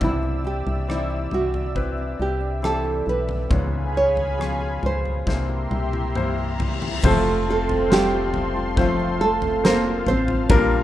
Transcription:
Already playing: E3 D4 E6
0.01 C2 G2 C3 C4 E4 D5 E5, kick, floor tom
0.22 C4
0.44 G4
0.67 C2 D4, floor tom
0.88 E3 C4 D#4 E4 D5, cross-stick
0.95 E4
1.10 G4
1.31 C2 D4 F#4, floor tom
1.54 floor tom
1.75 C4 E4 B4, kick
1.97 C4
2.19 C2 G4
2.40 D4
2.62 E3 C4 E4 G4 A4, cross-stick
2.84 G4
3.06 B1 D4 B4
3.28 G4, floor tom
3.49 C#2 G#2 C#3 B3 F4 G#4 C#5 F5 G#5 B5, kick, floor tom
3.94 G#4 C#5
4.16 C#4, floor tom
4.38 B2 F3 C#4 F4, cross-stick
4.60 G#4
4.83 C#2 C#4 C5, floor tom
5.05 G#4, floor tom
5.26 C2 G2 C3 A#3 E4 G4 C5 E5 A#5 C6, kick, snare, reverse cymbal
5.49 A#3
5.71 C2 G4, high tom
5.93 E4, high tom
6.15 E3 A#3 E4 C5, mid tom
6.38 G4
6.60 E4, floor tom
6.82 G4, floor tom
7.03 F1 C3 F3 A3 C4 F4 A4 C5 F5 A5 C6, kick, floor tom, crash
7.07 A3
7.26 C4
7.48 A3 F4 A4
7.69 C4, floor tom
7.89 A3 C4 F4 G4 A4 C5, snare
7.94 G3
8.12 F4
8.34 C4, floor tom
8.56 F4
8.76 F3 A3 C4 F4 C5, kick, floor tom
8.81 F3
8.99 C4
9.21 A3 F4 A4
9.42 C4, floor tom
9.64 F3 C4 F4 A#4 C5, snare
9.68 A#3
9.85 F4
10.07 A1 C4 C5, floor tom
10.28 F4, floor tom
10.49 A#1 A#2 G3 A#3 D4 F4 G4 A#4 D5 A#5, kick, floor tom
10.71 A#3

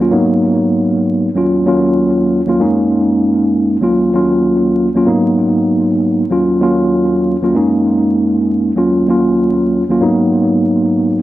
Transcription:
0.00 D#2 A#3 C#4 F4
0.10 G#2 F#3 A#3 B3 D#4
1.34 D#2 F#3 A#3 C#4 F4
1.65 D#2 F#3 A#3 C#4 F4
2.46 D#2 F#3 A#3 C#4 F4
2.58 F#2 G#3 A#3 C#4 D#4
3.81 D#2 F#3 A#3 C#4 F4
4.13 D#2 F#3 A#3 C#4 F4
4.94 D#2 F#3 A#3 C#4 F4
5.05 G#2 F#3 A#3 B3 D#4
6.29 D#2 F#3 A#3 C#4 F4
6.60 D#2 F#3 A#3 C#4 F4
7.41 D#2 F#3 A#3 C#4 F4
7.54 F#2 G#3 A#3 C#4 D#4
8.75 D#2 F#3 A#3 C#4 F4
9.07 D#2 F#3 A#3 C#4 F4
9.89 D#2 F#3 A#3 C#4 F4
10.00 G#2 F#3 A#3 B3 D#4

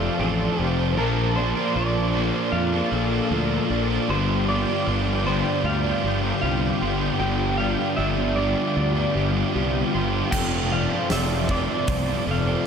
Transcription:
Already playing: F2 C3 F3 F4 A4 C5 D5 F5 A5
0.00 F3 A3 C4
0.04 C3
0.19 A1 F2 C3 F3 A3 C4 A4
0.58 F1 F2 C3 F3 A3 C4 G4 C5
0.62 C3
0.77 F3 A3 C4
0.97 A#1 A#2 F3 A#3 D4 F4 A#4 D5 A5
1.36 A#2 F3 A#3 D4 C5 D5
1.56 F3 A#3 D4
1.75 A#1 A#2 F3 A#3 D4 D5
1.97 F3 A#3
2.14 A#2 F3 A#3 D4 D5
2.34 F3 A#3 C5
2.52 F2 D5 F5
2.72 F3 A#3 D4
2.91 A#1 A#2 F3 A#3 D4 A4
3.11 F3 A#3 D4
3.30 D2 A#2 F3 A#3 D4 A4
3.70 A#1 A#2 F3 A#3 D4 D5
3.90 F3 A#3 D4
4.09 G1 G2 D3 F3 G3 B3 D4 F4 G4 C5 D5 G5
4.48 G2 D3 F3 G3 B3 D4 D5
4.67 D3 F3 G3 B3 D4
4.87 G1 G2 D3 F3 G3 B3 D4 D5
5.07 D3 G3
5.25 G2 D3 F3 G3 B3 C5 D5
5.29 G3 D4
5.45 D3 G3
5.64 D2 D5 F5
5.83 D3 F3 G3 B3 D4
6.03 G1 G2 D3 F3 G3 B3 D4 G4
6.22 D3 F3 G3 B3 D4
6.42 C2 G2 D3 F3 G3 B3 D4 G4 F5
6.81 G1 G2 D3 F3 G3 B3 D4 C6
7.01 F3 B3 D4
7.20 G1 G2 D3 F3 G3 B3 D4 G4 G5
7.58 G2 D3 F3 B3 D4 D5 F5
7.62 G3
7.78 D3 F3 G3 B3 D4
7.97 G1 G2 D3 F3 G3 B3 D4 D5 E5
8.16 D3 G3
8.36 G2 D3 F3 G3 B3 D5
8.40 D4
8.55 D3 G3
8.76 D2 D5
8.95 D3 F3 G3 B3 D4
9.15 G1 G2 D3 F3 G3 B3 D4 G4
9.33 D3 F3 G3 B3 D4
9.54 C2 G2 D3 F3 G3 B3 D4 G4
9.93 G1 G2 D3 F3 G3 B3 D4 C6
10.13 F3 B3 D4
10.31 F1 F2 C3 F3 A3 A4 C5 G5 A5, kick, crash
10.35 C4
10.71 F2 C3 F3 A3 C4 D5 F5
10.91 C3 F3 A3 C4
11.10 F1 F2 C3 F3 A3 C4 D5 E5, snare, open hi-hat
11.29 C3 F3
11.49 F2 C3 F3 A3 C4 D5, kick
11.69 C3 F3
11.88 C2 D5, kick, open hi-hat
12.08 C3 F3 A3 C4
12.27 F1 F2 C3 F3 A3 C4 A4
12.31 F5
12.46 C3 F3 A3 C4

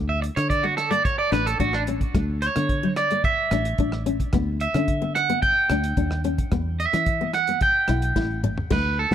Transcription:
Already playing: D2 A3
0.09 E5
0.22 muted clean electric guitar stroke, closed hi-hat
0.36 D3 C#5, cross-stick, closed hi-hat
0.50 D5, kick, closed hi-hat
0.63 A3 F#4
0.77 A4, cross-stick, closed hi-hat
0.91 A3 D5, closed hi-hat
1.05 C#5, kick, closed hi-hat
1.19 D5
1.32 A1 D4 B4, cross-stick, closed hi-hat
1.46 A4, closed hi-hat
1.60 A1 D4 F#4, kick, closed hi-hat
1.73 D4, cross-stick
1.87 C#4, closed hi-hat
2.01 kick, closed hi-hat
2.15 D2 A3, kick, cross-stick, closed hi-hat
2.42 C#5, closed hi-hat
2.56 D3 B3, cross-stick, closed hi-hat
2.69 kick, closed hi-hat
2.83 F#3
2.96 D5, cross-stick, closed hi-hat
3.10 A3, closed hi-hat
3.24 E5, kick, closed hi-hat
3.51 A1 D4, cross-stick, closed hi-hat
3.65 closed hi-hat
3.78 A1 D4, kick, closed hi-hat
3.92 cross-stick
4.06 C#4, closed hi-hat
4.20 kick, closed hi-hat
4.33 D2 B3, kick, cross-stick, closed hi-hat
4.60 E5, closed hi-hat
4.74 D3 C#4, cross-stick, closed hi-hat
4.88 kick, closed hi-hat
5.02 B3
5.15 F#5, cross-stick, closed hi-hat
5.29 B3, closed hi-hat
5.42 G5, kick, closed hi-hat
5.70 D2 D4, cross-stick, closed hi-hat
5.84 closed hi-hat
5.97 D#2 D4, kick, closed hi-hat
6.11 cross-stick
6.24 C#4, closed hi-hat
6.38 kick, closed hi-hat
6.52 E2 B3, kick, cross-stick, closed hi-hat
6.80 E5, closed hi-hat
6.93 E3 C#4, cross-stick, closed hi-hat
7.06 kick, closed hi-hat
7.21 B3
7.33 F#5, cross-stick, closed hi-hat
7.47 B3, closed hi-hat
7.61 G5, kick, closed hi-hat
7.88 B1 E4, cross-stick, closed hi-hat
8.02 closed hi-hat
8.16 A1 E4, kick, snare
8.44 muted nylon-string guitar stroke, mid tom
8.58 floor tom
8.70 D2 A3 B4, kick, snare, crash
8.99 A4
9.11 D3 B3, snare

